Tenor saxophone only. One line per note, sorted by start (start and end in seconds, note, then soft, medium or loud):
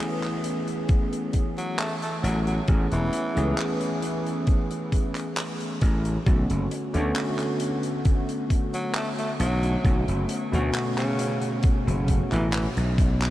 1.58 1.75 F#3 medium
1.79 1.94 A3 medium
2.02 2.16 A3 medium
2.23 2.38 F#3 medium
2.47 2.61 F#3 medium
2.92 3.58 E3 loud
8.74 8.91 F#3 medium
8.95 9.10 A3 medium
9.19 9.32 A3 medium
9.40 9.94 F#3 medium
10.98 11.51 C#3 medium
12.32 12.46 E3 medium
12.54 12.69 E3 medium